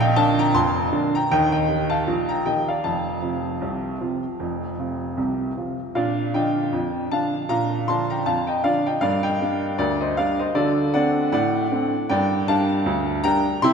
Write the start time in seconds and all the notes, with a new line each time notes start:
Already playing: A#1 A#2 F5
0.00 D#5 G5
0.16 D3 A#3 D4 F5 A5
0.39 G5 A#5
0.54 F1 F2 A5 C6
0.92 D3 A#3 D4
1.15 G5 A#5
1.31 D#2 D#3 D#5 G5
1.52 D#5 G5
1.69 D#3 A#3 G4
1.90 F5 A5
2.07 A#1 A#2
2.29 G5 A#5
2.46 D#3 A#3 G4 D#5 G5
2.68 D5 F5
2.84 F1 F2 F5 A5
3.22 C3 F3 F4
3.61 C2 C3
4.01 C3 F3 F4
4.40 F1 F2
4.79 C3 F3 F4
5.17 C2 C3
5.57 C3 F3 F4
5.95 A#2 D4 D5 F5
6.34 D3 F3 D4 D#5 G5
6.72 F2
7.11 D3 F3 D4 F5 A5
7.49 A#2 D4 F5 A#5
7.88 D3 F3 D4 A5 C6
8.10 G5 A#5
8.26 F2 F5 A5
8.47 D#5 G5
8.64 D3 F3 D4 D5 F5
8.86 D#5 G5
9.01 G2 A#3 D5 F5
9.23 D#5 G5
9.41 G3 A#3 D4
9.78 D2 A#4 D5
10.01 C5 D#5
10.17 G3 A#3 D4 D5 F5
10.39 C5 D#5
10.55 D3 F#4 A4 D5
10.94 A3 C4 D4 D5 F#5
11.32 A2 D5 F#5
11.72 A3 C4 D4
12.09 G2 A#3 D5 G5
12.48 G3 A#3 D4 F5 A5
12.86 D2
13.24 G3 A#3 D4 G5 A#5
13.62 C3 E4 G5 C6